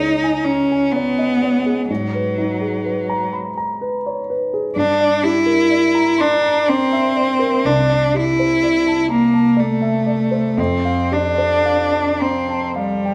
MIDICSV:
0, 0, Header, 1, 3, 480
1, 0, Start_track
1, 0, Tempo, 955414
1, 953, Time_signature, 6, 3, 24, 8
1, 2868, Tempo, 977199
1, 4308, Tempo, 940439
1, 4788, Tempo, 1008403
1, 5268, Tempo, 1065719
1, 5748, Tempo, 1117318
1, 6387, End_track
2, 0, Start_track
2, 0, Title_t, "Grand piano"
2, 0, Program_c, 0, 0
2, 0, Control_c, 0, 64, 127
2, 0, Note_on_c, 0, 37, 50
2, 0, Note_on_c, 0, 64, 37
2, 0, Note_on_c, 0, 68, 33
2, 0, Note_on_c, 0, 73, 33
2, 66, Note_off_c, 0, 68, 0
2, 119, Note_on_c, 0, 80, 44
2, 186, Note_off_c, 0, 73, 0
2, 243, Note_on_c, 0, 82, 32
2, 306, Note_off_c, 0, 80, 0
2, 356, Note_off_c, 0, 82, 0
2, 359, Note_on_c, 0, 80, 40
2, 482, Note_on_c, 0, 73, 38
2, 547, Note_off_c, 0, 80, 0
2, 596, Note_on_c, 0, 75, 33
2, 670, Note_off_c, 0, 73, 0
2, 715, Note_off_c, 0, 75, 0
2, 716, Note_on_c, 0, 73, 41
2, 834, Note_on_c, 0, 68, 41
2, 907, Note_off_c, 0, 73, 0
2, 935, Note_off_c, 0, 37, 0
2, 953, Note_off_c, 0, 68, 0
2, 956, Note_on_c, 0, 44, 46
2, 960, Control_c, 0, 64, 0
2, 962, Note_off_c, 0, 64, 0
2, 1028, Control_c, 0, 64, 127
2, 1077, Note_on_c, 0, 71, 38
2, 1195, Note_on_c, 0, 63, 44
2, 1266, Note_off_c, 0, 71, 0
2, 1313, Note_on_c, 0, 68, 35
2, 1385, Note_off_c, 0, 63, 0
2, 1430, Note_on_c, 0, 71, 40
2, 1504, Note_off_c, 0, 68, 0
2, 1555, Note_on_c, 0, 82, 47
2, 1624, Note_off_c, 0, 71, 0
2, 1672, Note_on_c, 0, 83, 37
2, 1747, Note_off_c, 0, 82, 0
2, 1793, Note_off_c, 0, 83, 0
2, 1796, Note_on_c, 0, 82, 46
2, 1916, Note_on_c, 0, 71, 42
2, 1987, Note_off_c, 0, 82, 0
2, 2042, Note_on_c, 0, 73, 40
2, 2106, Note_off_c, 0, 71, 0
2, 2157, Note_off_c, 0, 73, 0
2, 2160, Note_on_c, 0, 71, 41
2, 2279, Note_on_c, 0, 68, 42
2, 2345, Note_off_c, 0, 71, 0
2, 2370, Note_off_c, 0, 44, 0
2, 2391, Note_on_c, 0, 43, 57
2, 2392, Note_off_c, 0, 68, 0
2, 2396, Control_c, 0, 64, 0
2, 2459, Control_c, 0, 64, 127
2, 2516, Note_on_c, 0, 74, 42
2, 2630, Note_on_c, 0, 67, 44
2, 2701, Note_off_c, 0, 74, 0
2, 2743, Note_on_c, 0, 70, 39
2, 2819, Note_off_c, 0, 67, 0
2, 2866, Note_on_c, 0, 74, 40
2, 2937, Note_off_c, 0, 70, 0
2, 2985, Note_on_c, 0, 82, 49
2, 3059, Note_off_c, 0, 74, 0
2, 3101, Note_on_c, 0, 84, 38
2, 3180, Note_off_c, 0, 82, 0
2, 3221, Note_on_c, 0, 82, 47
2, 3225, Note_off_c, 0, 84, 0
2, 3344, Note_on_c, 0, 74, 41
2, 3417, Note_off_c, 0, 82, 0
2, 3465, Note_on_c, 0, 76, 43
2, 3536, Note_off_c, 0, 74, 0
2, 3583, Note_on_c, 0, 74, 44
2, 3585, Note_off_c, 0, 76, 0
2, 3694, Note_on_c, 0, 70, 44
2, 3775, Note_off_c, 0, 74, 0
2, 3806, Note_off_c, 0, 43, 0
2, 3820, Note_off_c, 0, 70, 0
2, 3820, Note_on_c, 0, 36, 52
2, 3834, Control_c, 0, 64, 0
2, 3927, Control_c, 0, 64, 127
2, 3943, Note_on_c, 0, 74, 42
2, 4063, Note_on_c, 0, 67, 42
2, 4138, Note_off_c, 0, 74, 0
2, 4187, Note_on_c, 0, 72, 39
2, 4257, Note_off_c, 0, 67, 0
2, 4303, Note_on_c, 0, 74, 41
2, 4378, Note_off_c, 0, 72, 0
2, 4425, Note_on_c, 0, 81, 47
2, 4497, Note_off_c, 0, 74, 0
2, 4543, Note_on_c, 0, 82, 37
2, 4616, Note_off_c, 0, 81, 0
2, 4663, Note_off_c, 0, 82, 0
2, 4664, Note_on_c, 0, 81, 43
2, 4781, Note_on_c, 0, 74, 43
2, 4854, Note_off_c, 0, 81, 0
2, 4901, Note_on_c, 0, 76, 43
2, 4970, Note_off_c, 0, 74, 0
2, 5018, Note_on_c, 0, 74, 44
2, 5020, Note_off_c, 0, 76, 0
2, 5137, Note_on_c, 0, 72, 40
2, 5215, Note_off_c, 0, 74, 0
2, 5244, Note_off_c, 0, 36, 0
2, 5261, Note_on_c, 0, 41, 56
2, 5263, Note_off_c, 0, 72, 0
2, 5273, Control_c, 0, 64, 0
2, 5338, Control_c, 0, 64, 127
2, 5386, Note_on_c, 0, 77, 47
2, 5505, Note_on_c, 0, 67, 46
2, 5576, Note_off_c, 0, 77, 0
2, 5625, Note_on_c, 0, 72, 39
2, 5697, Note_off_c, 0, 67, 0
2, 5748, Note_on_c, 0, 77, 36
2, 5817, Note_off_c, 0, 72, 0
2, 5863, Note_on_c, 0, 81, 41
2, 5936, Note_off_c, 0, 77, 0
2, 5980, Note_on_c, 0, 82, 33
2, 6055, Note_off_c, 0, 81, 0
2, 6102, Note_off_c, 0, 82, 0
2, 6106, Note_on_c, 0, 81, 44
2, 6222, Note_on_c, 0, 77, 36
2, 6298, Note_off_c, 0, 81, 0
2, 6348, Note_on_c, 0, 79, 36
2, 6387, Note_off_c, 0, 41, 0
2, 6387, Note_off_c, 0, 77, 0
2, 6387, Note_off_c, 0, 79, 0
2, 6387, End_track
3, 0, Start_track
3, 0, Title_t, "Cello"
3, 0, Program_c, 1, 42
3, 0, Note_on_c, 1, 63, 73
3, 226, Note_on_c, 1, 61, 68
3, 233, Note_off_c, 1, 63, 0
3, 464, Note_on_c, 1, 59, 79
3, 472, Note_off_c, 1, 61, 0
3, 950, Note_off_c, 1, 59, 0
3, 955, Note_on_c, 1, 54, 64
3, 1659, Note_off_c, 1, 54, 0
3, 2394, Note_on_c, 1, 62, 76
3, 2630, Note_on_c, 1, 64, 81
3, 2637, Note_off_c, 1, 62, 0
3, 3110, Note_on_c, 1, 62, 83
3, 3118, Note_off_c, 1, 64, 0
3, 3348, Note_on_c, 1, 60, 85
3, 3355, Note_off_c, 1, 62, 0
3, 3824, Note_on_c, 1, 62, 79
3, 3832, Note_off_c, 1, 60, 0
3, 4072, Note_on_c, 1, 64, 80
3, 4079, Note_off_c, 1, 62, 0
3, 4548, Note_off_c, 1, 64, 0
3, 4551, Note_on_c, 1, 58, 82
3, 4794, Note_on_c, 1, 57, 69
3, 4802, Note_off_c, 1, 58, 0
3, 5274, Note_on_c, 1, 60, 73
3, 5281, Note_off_c, 1, 57, 0
3, 5509, Note_on_c, 1, 62, 76
3, 5516, Note_off_c, 1, 60, 0
3, 5986, Note_on_c, 1, 60, 67
3, 5993, Note_off_c, 1, 62, 0
3, 6226, Note_off_c, 1, 60, 0
3, 6232, Note_on_c, 1, 55, 73
3, 6387, Note_off_c, 1, 55, 0
3, 6387, End_track
0, 0, End_of_file